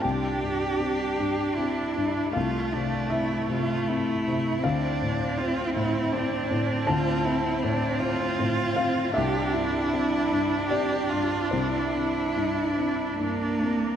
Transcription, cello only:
X:1
M:3/4
L:1/8
Q:1/4=79
K:Cmix
V:1 name="Cello"
G4 E2 | F D E F E2 | D2 F E D2 | F E D F3 |
G E3 G F | E4 B,2 |]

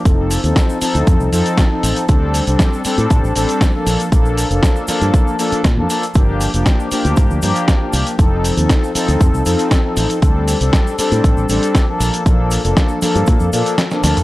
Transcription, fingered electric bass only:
X:1
M:4/4
L:1/16
Q:1/4=118
K:Bb
V:1 name="Fingered electric bass" clef=bass
F,,,2 z E,, z3 D,, F,, C,, F,, z3 A,,, z | D,,2 z C,, z3 A,, A,,, A,,, A,,, z3 B,,, z | B,,,2 z F,,, z3 G,, z4 B,, F,, z2 | G,,,2 z F,,, z3 D,, G,, D,, G,, z3 C,, z |
F,,,2 z E,, z3 D,, F,, C,, F,, z3 A,,, z | D,,2 z C,, z3 A,, A,,, A,,, A,,, z3 B,,, z | B,,,2 z F,,, z3 G,, B,, F,, B,, z3 D,, z |]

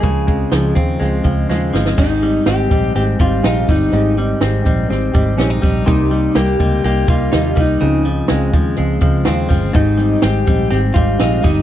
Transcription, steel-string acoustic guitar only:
X:1
M:4/4
L:1/8
Q:1/4=124
K:Ab
V:1 name="Steel-string acoustic guitar"
[D,F,A,CF] [A,CF] [D,F,A,CF] [A,CF] [F,A,CF] [A,CF] [D,F,A,CF] [A,CF] | [A,CEG] [CEG] [A,CEG] [CEG] [A,CEG] [CEG] [A,CEG] [CEG] | [A,CEG] [CEG] [A,CEG] [CEG] [A,CEG] [CEG] [A,CEG] [CEG] | [C,G,B,EG] [B,EG] [C,G,B,EG] [B,EG] [G,B,EG] [B,EG] [C,G,B,EG] [B,EG] |
[D,F,A,CF] [A,CF] [D,F,A,CF] [A,CF] [F,A,CF] [A,CF] [D,F,A,CF] [A,CF] | [A,CEG] [CEG] [A,CEG] [CEG] [A,CEG] [CEG] [A,CEG] [CEG] |]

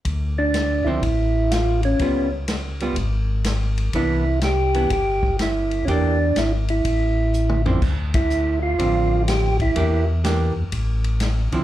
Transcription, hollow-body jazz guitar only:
X:1
M:4/4
L:1/8
Q:"Swing" 1/4=124
K:Dm
V:1 name="Hollow-body jazz guitar"
z3 [D,F,CE] z4 | [G,=B,^E] z2 [G,B,E] z4 | [E,=B,D] z2 [E,B,D] z4 | [E,B,DG] z6 [D,F,CE] |
z4 [D,F,C]3 z | [E,B,DG] z [E,B,DG] z4 [D,F,CE] |]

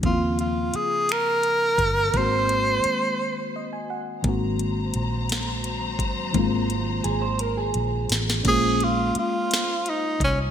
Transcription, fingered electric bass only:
X:1
M:6/8
L:1/8
Q:3/8=57
K:Abmix
V:1 name="Fingered electric bass" clef=bass
E,,2 z3 =G,,, | A,,,2 z4 | A,,,2 B,,,3 =G,,, | A,,,2 A,,,2 B,,, =A,,, |
B,,,2 z3 C,, |]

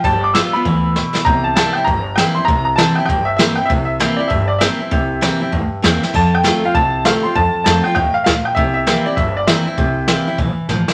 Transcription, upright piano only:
X:1
M:4/4
L:1/8
Q:"Swing" 1/4=198
K:Cmix
V:1 name="Upright piano"
a d' e' =b4- b | b a a g b2 g c' | b b a g g e e g | e e2 d e d e2- |
e6 z2 | a g2 f a2 f c' | a2 a g g f f g | e e2 d e d e2- |
e6 z2 |]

